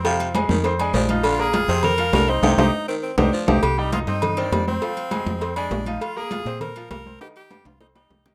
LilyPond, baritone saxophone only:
\new Staff \with { instrumentName = "Baritone saxophone" } { \clef bass \time 4/4 \key c \minor \tempo 4 = 201 c4. ees4. f4 | d4. c4. d4 | c4. ees4. f4 | r1 |
r1 | r1 | r1 | }